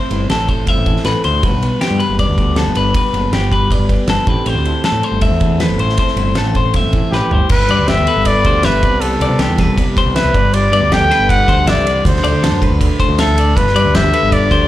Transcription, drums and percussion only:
0.11 ride
0.30 snare, ride
0.48 kick, ride
0.67 kick, ride
0.86 kick, ride
0.96 snare
1.05 snare, ride
1.24 ride
1.43 kick, ride
1.62 ride
1.81 snare, ride
2.00 ride
2.19 kick, ride
2.38 kick, ride
2.56 snare, ride
2.75 ride
2.95 kick, ride
3.14 ride
3.33 snare, ride
3.52 kick, ride
3.71 kick, ride
3.89 kick, ride
4.08 snare, ride
4.27 kick, ride
4.46 ride
4.65 ride
4.84 snare, ride
5.03 ride
5.21 kick, ride
5.41 kick, ride
5.60 snare, ride
5.79 ride
5.89 snare
5.97 kick, ride
6.08 snare
6.17 ride
6.35 snare, ride
6.55 kick, ride
6.74 kick, ride
6.93 kick, ride
7.12 snare
7.31 floor tom
7.49 kick, crash
7.60 snare
7.69 ride
7.88 snare, ride
8.07 ride
8.25 kick, ride
8.45 kick, ride
8.63 snare, ride
8.83 kick, ride
9.02 ride
9.21 ride
9.39 snare, ride
9.58 kick, snare, ride
9.78 kick, ride
9.97 kick, ride
10.16 snare, ride
10.35 kick, ride
10.54 ride
10.73 ride
10.92 snare, ride
11.11 snare, ride
11.29 kick, ride
11.48 kick, ride
11.67 snare, ride
11.87 ride
12.05 kick, ride
12.16 snare
12.24 ride
12.44 snare, ride
12.62 kick, ride
12.81 kick, ride
13.00 kick, ride
13.19 snare, ride
13.38 ride
13.57 kick, ride
13.67 snare
13.76 ride
13.95 snare, ride
14.13 ride
14.32 kick, ride
14.51 kick, ride

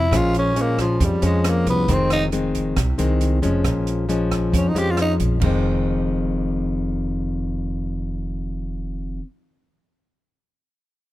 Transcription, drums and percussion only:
0.12 kick, cross-stick, closed hi-hat
0.34 closed hi-hat
0.56 closed hi-hat
0.78 kick, cross-stick, closed hi-hat
1.00 kick, closed hi-hat
1.22 closed hi-hat
1.45 cross-stick, closed hi-hat
1.66 kick, closed hi-hat
1.88 kick, closed hi-hat
2.10 cross-stick, closed hi-hat
2.32 closed hi-hat
2.54 kick, closed hi-hat
2.77 kick, cross-stick, closed hi-hat
2.99 closed hi-hat
3.21 closed hi-hat
3.43 kick, closed hi-hat
3.64 kick, cross-stick, closed hi-hat
3.87 closed hi-hat
4.09 closed hi-hat
4.31 kick, cross-stick, closed hi-hat
4.54 kick, closed hi-hat
4.76 closed hi-hat
4.97 cross-stick, closed hi-hat
5.20 kick, closed hi-hat
5.41 kick, crash

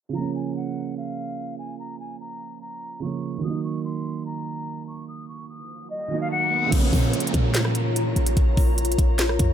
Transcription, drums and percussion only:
6.72 kick, closed hi-hat, crash
6.93 kick, open hi-hat
7.13 closed hi-hat
7.20 closed hi-hat
7.27 closed hi-hat
7.34 kick, closed hi-hat
7.54 snare, clap, closed hi-hat
7.65 cross-stick
7.75 closed hi-hat
7.96 closed hi-hat
8.16 closed hi-hat
8.27 closed hi-hat
8.37 kick, closed hi-hat
8.57 kick, open hi-hat
8.78 closed hi-hat
8.85 closed hi-hat
8.92 closed hi-hat
8.98 kick, closed hi-hat
9.19 snare, clap, closed hi-hat
9.29 cross-stick
9.39 kick, closed hi-hat

